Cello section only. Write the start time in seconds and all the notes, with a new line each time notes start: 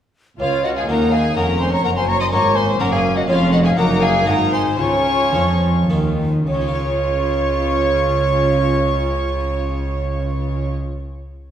0.40 C#2
0.88 D#2
1.37 F2
1.85 F#2
2.32 G#2
2.80 F#2
3.28 F2
3.77 F#2
4.27 G#2
4.79 C#3
5.34 F3
5.89 D#3
6.47 C#3